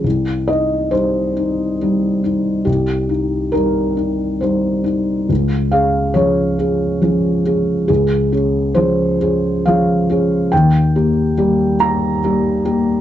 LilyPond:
\new Staff \with { instrumentName = "Felt piano" } { \time 3/4 \key c \phrygian \tempo 4 = 69 << { r8 ees''8 c''2 | g'4 bes'4 c''4 | r8 f''8 des''2 | aes'4 c''4 f''4 |
g''4. bes''4. | } \\ { c,8 ees'8 <g ees'>8 ees'8 <g ees'>8 ees'8 | c,8 ees'8 <g ees'>8 ees'8 <g ees'>8 ees'8 | des,8 <des' aes'>8 <f des' aes'>8 <des' aes'>8 <f des' aes'>8 <des' aes'>8 | des,8 <des' aes'>8 <f des' aes'>8 <des' aes'>8 <f des' aes'>8 <des' aes'>8 |
ees,8 <bes g'>8 <g bes g'>8 <bes g'>8 <g bes g'>8 <bes g'>8 | } >> }